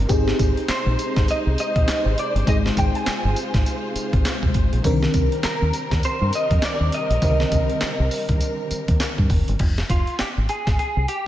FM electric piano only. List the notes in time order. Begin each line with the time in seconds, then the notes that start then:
0.09 C4 D#4 G4 G#4
2.46 G#3 C4 D#4 G#4
4.83 D3 C4 D4 A#4
4.90 D#3
7.22 D3 D#3 C4 A#4